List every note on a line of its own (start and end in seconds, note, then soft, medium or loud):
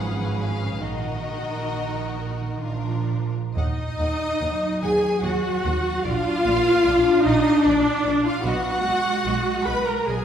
0.00 0.79 G#1 medium
0.00 0.34 F3 medium
0.00 0.79 F3 medium
0.00 0.77 C#4 medium
0.00 0.76 G#4 medium
0.00 0.79 B4 medium
0.08 0.16 F5 medium
0.15 0.23 F#5 medium
0.25 0.32 F5 medium
0.34 0.78 G#3 medium
0.34 0.41 F#5 medium
0.43 0.80 F5 medium
0.78 2.58 A#1 medium
0.78 2.59 D#3 medium
0.78 2.63 D#3 medium
0.78 2.59 D#4 medium
0.78 2.62 F#4 medium
0.78 2.60 A#4 medium
0.78 2.63 D#5 medium
2.62 3.33 A#1 medium
2.62 3.35 F3 medium
2.62 3.35 D4 medium
2.62 3.34 F4 soft
2.62 3.32 A#4 medium
3.54 3.63 D#2 medium
3.54 4.78 D#4 medium
3.54 4.78 D#5 loud
3.54 3.66 F#5 medium
3.99 4.07 D#2 medium
3.99 4.08 F#5 medium
4.40 4.49 D#2 medium
4.40 6.01 F#3 medium
4.40 4.48 F#5 medium
4.82 4.91 D#2 medium
4.82 5.23 G#4 loud
4.82 4.90 F#5 medium
4.82 5.23 G#5 medium
5.22 5.31 D#2 medium
5.22 6.05 F#4 medium
5.22 6.04 F#5 medium
5.22 5.31 F#5 medium
5.64 5.72 D#2 medium
5.64 5.72 F#5 medium
6.03 6.13 A#1 medium
6.03 6.44 D4 medium
6.03 7.24 F4 loud
6.03 6.12 D5 medium
6.03 7.25 F5 loud
6.45 6.54 A#1 medium
6.45 6.85 A#3 medium
6.45 6.55 D5 medium
6.85 6.94 A#1 medium
6.85 8.44 D4 loud
6.85 6.95 D5 medium
7.25 7.34 A#1 medium
7.25 7.66 D#4 loud
7.25 7.36 D5 medium
7.25 7.65 D#5 loud
7.65 7.75 A#1 medium
7.65 8.24 D4 loud
7.65 8.24 D5 loud
7.65 7.76 D5 medium
8.06 8.14 A#1 medium
8.06 8.15 D5 medium
8.25 8.44 F4 loud
8.25 8.44 F5 medium
8.43 8.52 B1 medium
8.43 8.83 B3 medium
8.43 9.62 F#4 loud
8.43 8.54 D#5 medium
8.43 9.65 F#5 loud
8.83 8.93 B1 medium
8.83 10.06 G#3 medium
8.88 8.96 D#5 medium
9.25 9.33 B1 medium
9.25 9.34 D#5 medium
9.64 9.74 B1 medium
9.64 9.85 B4 loud
9.64 9.74 D#5 medium
9.64 9.85 B5 loud
9.85 10.07 A#4 medium
9.85 10.06 A#5 medium
10.05 10.15 B1 medium
10.05 10.25 F#3 medium
10.05 10.25 G#4 medium
10.05 10.16 D#5 medium
10.05 10.25 G#5 medium